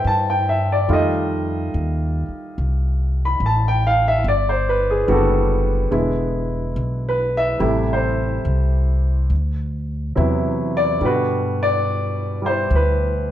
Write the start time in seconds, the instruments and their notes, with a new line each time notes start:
Already playing: grand piano E3 A3 G4 A4 B4 C5 E5 G5
0.04 upright bass G2, grand piano A5
0.30 grand piano G5
0.49 grand piano E5
0.72 grand piano D5
0.88 upright bass F2, grand piano D#3 G3 A3 F4
0.93 grand piano D#5
1.74 upright bass D#2
2.29 muted upright bass stroke
2.58 upright bass C2
3.25 grand piano B5
3.40 upright bass A1
3.46 grand piano A5
3.68 grand piano G5
3.87 grand piano F5
4.08 grand piano E5
4.24 upright bass G1
4.28 grand piano D5
4.49 grand piano C5
4.69 grand piano B4
4.90 grand piano G#4
5.07 upright bass F#1, grand piano D3 G3 B3 F#4
5.11 grand piano A4
5.91 upright bass E1, grand piano D3 G#3 B3 E4
6.76 upright bass B1
7.09 grand piano B4
7.37 grand piano E5
7.59 upright bass A1, grand piano C3 G3 A3 E4
7.93 grand piano C5
8.45 upright bass C2
9.30 upright bass D2
10.16 upright bass E2, grand piano C3 F#3 B3 E4
10.77 grand piano D5
11.00 upright bass G2, grand piano B2 D3 G3
11.05 grand piano F#4 B4
11.63 grand piano D5
12.42 grand piano G3 E4
12.46 grand piano C5
12.70 upright bass D2
12.75 grand piano B4